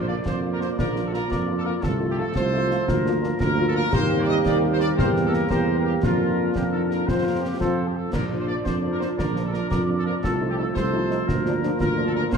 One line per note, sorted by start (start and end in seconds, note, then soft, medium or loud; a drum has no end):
0.00 0.17 A#1 medium
0.00 1.79 F3 medium
0.00 1.79 A#3 medium
0.00 0.74 F4 medium
0.00 0.04 C5 medium
0.00 0.74 D5 medium
0.07 0.14 A#3 soft
0.07 0.14 D4 soft
0.07 0.14 F4 medium
0.07 0.15 D5 medium
0.25 0.69 F2 medium
0.25 0.38 C5 medium
0.25 concert bass drum medium
0.25 snare medium
0.42 0.48 A#3 soft
0.42 0.49 D4 soft
0.42 0.48 F4 soft
0.53 0.60 A#4 medium
0.60 0.67 A#3 soft
0.60 0.66 D4 medium
0.60 0.66 F4 soft
0.60 0.68 C5 medium
0.60 snare soft
0.78 1.21 A#1 medium
0.78 1.27 F4 medium
0.78 1.03 A#4 medium
0.78 1.27 D5 medium
0.78 concert bass drum medium
0.78 snare medium
0.95 1.01 A#3 medium
0.95 1.01 D4 soft
0.95 1.01 F4 medium
0.95 snare soft
1.07 1.10 A4 medium
1.12 1.19 A#3 soft
1.12 1.19 D4 soft
1.12 1.19 F4 medium
1.12 1.29 A#4 medium
1.12 snare soft
1.30 1.74 F2 medium
1.30 1.80 F4 medium
1.30 1.43 A#4 medium
1.30 1.79 D5 medium
1.30 concert bass drum medium
1.30 snare medium
1.47 1.54 A#3 soft
1.47 1.54 D4 medium
1.47 1.54 F4 medium
1.58 1.62 A4 medium
1.65 1.71 A#3 soft
1.65 1.71 D4 medium
1.65 1.71 F4 medium
1.65 1.73 A#4 medium
1.82 2.21 C2 medium
1.82 3.89 F3 medium
1.82 2.84 A3 medium
1.82 2.32 F4 medium
1.82 2.34 A4 medium
1.82 1.95 A4 medium
1.82 concert bass drum medium
1.82 snare medium
2.00 2.06 A3 medium
2.00 2.06 D#4 medium
2.00 2.06 F4 medium
2.10 2.18 G4 medium
2.17 2.24 A3 medium
2.17 2.24 D#4 medium
2.17 2.24 F4 medium
2.17 2.35 A4 medium
2.35 2.79 C2 medium
2.35 2.84 F4 medium
2.35 2.84 A4 medium
2.35 3.19 C5 loud
2.35 concert bass drum medium
2.35 snare medium
2.53 2.59 A3 medium
2.53 2.59 D#4 medium
2.53 2.59 F4 medium
2.70 2.77 A3 medium
2.70 2.77 D#4 medium
2.70 2.77 F4 medium
2.70 snare soft
2.87 3.31 D2 medium
2.87 4.98 A#3 medium
2.87 3.36 F4 medium
2.87 3.38 A#4 medium
2.87 concert bass drum medium
2.87 snare medium
3.05 3.12 A#3 medium
3.05 3.12 D4 medium
3.05 3.12 F4 medium
3.05 snare medium
3.22 3.29 A#3 medium
3.22 3.29 D4 medium
3.22 3.29 F4 medium
3.22 snare soft
3.39 3.84 D2 medium
3.39 3.89 F4 medium
3.39 3.89 A#4 medium
3.39 3.65 A#4 medium
3.39 concert bass drum medium
3.39 snare medium
3.58 3.64 A#3 medium
3.58 3.64 D4 medium
3.58 3.64 F4 medium
3.68 3.71 A4 medium
3.75 3.81 A#3 medium
3.75 3.81 D4 medium
3.75 3.81 F4 medium
3.75 3.92 A#4 loud
3.92 4.39 D#2 medium
3.92 6.03 G3 medium
3.92 4.94 A#3 medium
3.92 4.94 C4 medium
3.92 4.94 G4 medium
3.92 4.94 A#4 medium
3.92 4.17 C5 loud
3.92 concert bass drum medium
3.92 snare medium
3.92 crash soft
4.21 4.29 D5 loud
4.28 4.36 D#5 loud
4.45 4.92 D#2 medium
4.45 4.57 D5 medium
4.45 concert bass drum medium
4.45 snare medium
4.72 4.80 C5 medium
4.80 4.88 D5 loud
4.80 snare soft
4.97 5.44 E2 medium
4.97 5.47 A#3 medium
4.97 7.05 A#3 medium
4.97 5.47 C4 medium
4.97 5.47 G4 medium
4.97 5.47 A#4 medium
4.97 5.09 C5 medium
4.97 concert bass drum medium
4.97 snare medium
5.16 snare soft
5.25 5.33 A4 medium
5.33 5.51 A#4 medium
5.33 snare medium
5.50 5.97 E2 medium
5.50 5.99 A#3 medium
5.50 5.99 C4 medium
5.50 5.99 G4 medium
5.50 5.99 A#4 medium
5.50 5.75 C5 medium
5.50 concert bass drum medium
5.50 snare medium
5.77 5.86 A#4 medium
5.85 5.93 G4 medium
6.02 6.49 F2 medium
6.02 7.91 F3 medium
6.02 7.04 A#3 medium
6.02 6.73 D4 medium
6.02 7.08 D4 medium
6.02 6.51 F4 medium
6.02 7.06 F4 medium
6.02 7.04 A#4 medium
6.02 concert bass drum medium
6.02 snare medium
6.55 7.02 F2 medium
6.55 6.63 G4 medium
6.55 concert bass drum medium
6.55 snare medium
6.72 7.08 D#4 soft
6.72 6.80 A4 medium
6.90 7.06 A#4 medium
6.90 snare soft
7.07 7.54 F2 medium
7.07 7.59 F3 medium
7.07 7.59 C4 medium
7.07 7.92 C4 soft
7.07 7.57 F4 medium
7.07 7.45 F4 soft
7.07 7.25 C5 medium
7.07 7.45 C5 soft
7.07 concert bass drum medium
7.07 snare medium
7.24 7.42 A#4 medium
7.41 7.58 G4 medium
7.60 8.06 F2 medium
7.60 7.93 F3 soft
7.60 7.93 C4 soft
7.60 7.93 F4 soft
7.60 7.84 A4 medium
7.60 7.93 C5 soft
7.60 concert bass drum medium
7.60 snare medium
7.87 7.96 G4 medium
7.95 8.13 A4 medium
8.12 8.57 A#1 medium
8.12 10.19 F3 medium
8.12 10.19 D4 medium
8.12 9.14 F4 medium
8.12 8.25 A#4 medium
8.12 9.14 D5 medium
8.12 concert bass drum medium
8.12 snare medium
8.12 crash soft
8.30 8.37 F3 medium
8.30 8.37 A#3 medium
8.30 8.37 D4 medium
8.40 8.44 C5 medium
8.47 8.54 F3 soft
8.47 8.54 A#3 soft
8.47 8.54 D4 soft
8.47 8.55 D5 medium
8.64 9.05 F2 medium
8.64 8.76 C5 medium
8.64 concert bass drum medium
8.64 snare medium
8.83 8.89 F3 soft
8.83 8.89 A#3 medium
8.83 8.89 D4 soft
8.92 9.00 A#4 medium
8.99 9.07 F3 soft
8.99 9.07 A#3 soft
8.99 9.07 D4 soft
8.99 9.07 C5 medium
8.99 snare soft
9.18 9.62 A#1 medium
9.18 9.67 F4 medium
9.18 9.42 A#4 medium
9.18 9.67 D5 medium
9.18 concert bass drum medium
9.18 snare medium
9.35 9.42 F3 medium
9.35 9.41 A#3 medium
9.35 9.41 D4 soft
9.35 snare soft
9.45 9.49 A4 medium
9.52 9.59 F3 soft
9.52 9.60 A#3 medium
9.52 9.59 D4 medium
9.52 9.68 A#4 medium
9.52 snare soft
9.69 10.14 F2 medium
9.69 10.19 F4 medium
9.69 9.81 A#4 medium
9.69 10.19 D5 medium
9.69 concert bass drum medium
9.69 snare medium
9.88 9.94 F3 soft
9.88 9.95 A#3 medium
9.88 9.95 D4 soft
9.98 10.02 A4 medium
10.06 10.12 F3 medium
10.06 10.12 A#3 medium
10.06 10.12 D4 medium
10.06 10.14 A#4 medium
10.23 10.67 C2 medium
10.23 12.29 F3 medium
10.23 11.28 A3 medium
10.23 10.72 F4 medium
10.23 10.35 A4 medium
10.23 10.72 A4 medium
10.23 concert bass drum medium
10.23 snare medium
10.41 10.47 F3 medium
10.41 10.47 A3 medium
10.41 10.47 D#4 medium
10.50 10.54 G4 medium
10.57 10.64 F3 medium
10.57 10.64 A3 medium
10.57 10.64 D#4 medium
10.57 10.65 A4 medium
10.74 11.19 C2 medium
10.74 11.25 F4 medium
10.74 11.25 A4 medium
10.74 11.59 C5 medium
10.74 concert bass drum medium
10.74 snare medium
10.93 10.99 F3 medium
10.93 10.99 A3 medium
10.93 10.99 D#4 medium
11.10 11.16 F3 medium
11.10 11.17 A3 medium
11.10 11.16 D#4 medium
11.10 snare soft
11.27 11.72 D2 medium
11.27 12.38 A#3 medium
11.27 11.76 F4 medium
11.27 11.79 A#4 medium
11.27 concert bass drum medium
11.27 snare medium
11.46 11.52 F3 medium
11.46 11.52 A#3 medium
11.46 11.52 D4 medium
11.46 snare soft
11.63 11.69 F3 medium
11.63 11.69 A#3 medium
11.63 11.69 D4 medium
11.63 snare soft
11.80 12.24 D2 medium
11.80 12.29 F4 medium
11.80 12.04 A#4 medium
11.80 12.29 A#4 medium
11.80 concert bass drum medium
11.80 snare medium
11.97 12.04 F3 medium
11.97 12.04 A#3 medium
11.97 12.04 D4 medium
12.07 12.11 A4 medium
12.15 12.21 F3 medium
12.15 12.21 A#3 medium
12.15 12.21 D4 medium
12.15 12.23 A#4 medium
12.32 12.38 D#2 medium
12.32 12.38 G3 medium
12.32 12.38 G4 medium
12.32 12.38 A#4 medium
12.32 12.38 C5 medium
12.32 concert bass drum medium
12.32 snare medium
12.32 crash soft